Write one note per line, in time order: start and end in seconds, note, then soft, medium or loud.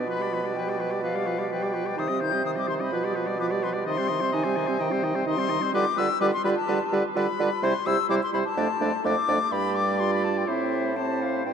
0.00 1.94 B2 medium
0.07 0.21 F3 medium
0.07 0.20 F4 medium
0.07 0.24 B4 medium
0.07 0.54 B5 loud
0.19 0.33 G3 medium
0.19 0.32 G4 medium
0.19 0.36 D5 medium
0.30 0.44 F3 medium
0.30 0.44 F4 medium
0.34 0.47 B4 medium
0.42 0.55 G3 medium
0.42 0.53 G4 medium
0.42 0.56 D5 medium
0.54 0.69 F3 medium
0.54 0.68 F4 medium
0.54 0.71 B4 medium
0.54 1.02 G5 medium
0.67 0.80 G3 medium
0.67 0.80 G4 medium
0.67 0.82 D5 medium
0.78 0.92 F3 medium
0.78 0.92 F4 medium
0.78 0.93 B4 medium
0.91 1.02 G3 medium
0.91 1.01 G4 medium
0.91 1.03 D5 medium
1.02 1.16 F3 medium
1.02 1.16 F4 medium
1.02 1.17 B4 medium
1.02 1.50 F5 loud
1.14 1.27 G3 medium
1.14 1.27 G4 medium
1.14 1.28 D5 medium
1.26 1.40 F3 medium
1.26 1.40 F4 medium
1.26 1.41 B4 medium
1.38 1.49 G3 medium
1.38 1.49 G4 medium
1.38 1.51 D5 medium
1.50 1.63 F3 medium
1.50 1.63 F4 medium
1.50 1.64 B4 medium
1.50 2.00 G5 medium
1.61 1.75 G3 medium
1.61 1.75 G4 medium
1.61 1.76 D5 medium
1.73 1.87 F3 medium
1.73 1.86 F4 medium
1.73 1.88 B4 medium
1.85 1.96 G3 medium
1.85 1.96 G4 medium
1.85 1.97 D5 medium
1.96 2.95 C3 medium
1.96 2.10 D#3 medium
1.96 2.11 D#4 medium
1.96 2.10 C5 medium
1.96 2.22 D#6 loud
2.09 2.23 G3 medium
2.09 2.24 C4 medium
2.09 2.22 D#5 medium
2.21 2.34 D#3 medium
2.21 2.35 D#4 medium
2.21 2.34 C5 medium
2.21 2.45 G6 loud
2.32 2.44 G3 medium
2.32 2.44 C4 medium
2.32 2.43 D#5 medium
2.44 2.58 D#3 medium
2.44 2.58 D#4 medium
2.44 2.57 C5 medium
2.44 2.51 D#6 loud
2.56 2.70 G3 medium
2.56 2.70 C4 medium
2.56 2.69 D#5 medium
2.56 2.69 D6 loud
2.67 2.82 D#3 medium
2.67 2.82 D#4 medium
2.67 2.82 C5 medium
2.67 2.75 C6 medium
2.81 2.91 G3 medium
2.81 2.92 C4 medium
2.81 2.92 D#5 medium
2.81 3.14 B5 loud
2.92 3.87 B2 medium
2.92 3.05 F3 medium
2.92 3.06 F4 medium
2.92 3.06 B4 medium
3.04 3.17 G3 medium
3.04 3.18 G4 medium
3.04 3.17 D5 medium
3.15 3.29 F3 medium
3.15 3.30 F4 medium
3.15 3.28 B4 medium
3.27 3.38 G3 medium
3.27 3.40 G4 medium
3.27 3.39 D5 medium
3.39 3.53 F3 medium
3.39 3.53 F4 medium
3.39 3.52 B4 medium
3.39 3.46 D6 loud
3.51 3.64 G3 medium
3.51 3.65 G4 medium
3.51 3.65 D5 medium
3.63 3.76 F3 medium
3.63 3.77 F4 medium
3.63 3.75 B4 medium
3.63 3.70 C6 loud
3.74 3.86 G3 medium
3.74 3.87 G4 medium
3.74 3.85 D5 medium
3.86 5.58 C3 medium
3.86 4.00 D#3 medium
3.86 4.00 D#4 medium
3.86 3.99 D#5 medium
3.86 4.36 C6 loud
3.98 4.12 G3 medium
3.98 4.12 C4 medium
3.98 4.10 C5 medium
4.08 4.23 D#3 medium
4.08 4.23 D#4 medium
4.08 4.22 D#5 medium
4.21 4.33 G3 medium
4.21 4.33 C4 medium
4.21 4.31 C5 medium
4.32 4.47 D#3 medium
4.32 4.46 D#4 medium
4.32 4.45 D#5 medium
4.32 4.82 G#5 loud
4.44 4.58 G3 medium
4.44 4.58 C4 medium
4.44 4.58 C5 medium
4.56 4.69 D#3 medium
4.56 4.70 D#4 medium
4.56 4.69 D#5 medium
4.67 4.80 G3 medium
4.67 4.78 C4 medium
4.67 4.79 C5 medium
4.79 4.94 D#3 medium
4.79 4.93 D#4 medium
4.79 4.93 D#5 medium
4.79 5.27 G5 loud
4.91 5.05 G3 medium
4.91 5.05 C4 medium
4.91 5.05 C5 medium
5.03 5.16 D#3 medium
5.03 5.17 D#4 medium
5.03 5.17 D#5 medium
5.15 5.26 G3 medium
5.15 5.26 C4 medium
5.15 5.26 C5 medium
5.26 5.39 D#3 medium
5.26 5.39 D#4 medium
5.26 5.41 D#5 medium
5.26 5.74 C6 loud
5.38 5.51 G3 medium
5.38 5.51 C4 medium
5.38 5.51 C5 medium
5.49 5.63 D#3 medium
5.49 5.63 D#4 medium
5.49 5.64 D#5 medium
5.62 5.73 G3 medium
5.62 5.74 C4 medium
5.62 5.74 C5 medium
5.73 5.86 D3 loud
5.73 5.84 G3 medium
5.73 5.85 F4 medium
5.73 5.85 B4 medium
5.73 6.00 D6 loud
5.97 6.09 D3 medium
5.97 6.08 G3 medium
5.97 6.09 F4 medium
5.97 6.08 B4 medium
5.97 6.21 E6 loud
6.21 6.33 D3 loud
6.21 6.31 G3 medium
6.21 6.32 F4 medium
6.21 6.31 B4 medium
6.21 6.26 D6 loud
6.33 6.44 C6 loud
6.44 6.56 D3 medium
6.44 6.55 G3 medium
6.44 6.56 F4 medium
6.44 6.55 B4 medium
6.44 6.50 B5 loud
6.56 6.94 A5 loud
6.68 6.79 D3 medium
6.68 6.79 G3 medium
6.68 6.79 F4 medium
6.68 6.79 B4 medium
6.92 7.03 D3 medium
6.92 7.03 G3 medium
6.92 7.03 F4 medium
6.92 7.03 B4 medium
7.15 7.27 D3 loud
7.15 7.26 G3 medium
7.15 7.26 F4 medium
7.15 7.27 B4 medium
7.15 7.64 B5 loud
7.39 7.50 D3 medium
7.39 7.50 G3 medium
7.39 7.50 F4 medium
7.39 7.51 B4 medium
7.62 7.73 C3 loud
7.62 7.73 G3 medium
7.62 7.74 E4 medium
7.62 7.74 C5 medium
7.62 7.88 C6 loud
7.86 7.97 C3 medium
7.86 7.97 G3 medium
7.86 7.98 E4 medium
7.86 7.97 C5 medium
7.86 8.09 E6 loud
8.09 8.21 C3 medium
8.09 8.20 G3 medium
8.09 8.21 E4 medium
8.09 8.21 C5 medium
8.09 8.15 D6 loud
8.23 8.33 C6 loud
8.33 8.44 C3 medium
8.33 8.43 G3 medium
8.33 8.44 E4 medium
8.33 8.44 C5 medium
8.33 8.39 B5 loud
8.45 9.06 A5 loud
8.57 8.67 F2 medium
8.57 8.68 A3 medium
8.57 8.68 D4 medium
8.57 8.68 D5 medium
8.81 8.92 F2 medium
8.81 8.91 A3 medium
8.81 8.92 D4 medium
8.81 8.91 D5 medium
9.04 9.15 F2 medium
9.04 9.15 A3 medium
9.04 9.15 D4 medium
9.04 9.16 D5 medium
9.04 9.53 D6 loud
9.28 9.39 F2 medium
9.28 9.39 A3 medium
9.28 9.39 D4 medium
9.28 9.39 D5 medium
9.52 10.43 G2 medium
9.52 10.44 G3 loud
9.52 10.02 G4 medium
9.52 10.49 D5 medium
9.52 9.77 B5 loud
9.75 10.01 D6 loud
10.00 10.50 F4 medium
10.00 10.11 C6 loud
10.14 10.26 B5 loud
10.24 10.39 A5 loud
10.37 10.48 G5 medium
10.47 11.44 A2 medium
10.47 10.95 C4 medium
10.47 10.96 E4 medium
10.47 10.95 C5 medium
10.47 10.98 E5 loud
10.96 11.45 C4 medium
10.96 11.45 E4 medium
10.96 11.45 C5 medium
10.96 11.23 A5 loud
11.22 11.48 F5 medium
11.45 11.53 G2 medium
11.45 11.53 C4 medium
11.45 11.53 E4 medium
11.45 11.53 C5 medium
11.45 11.53 G5 medium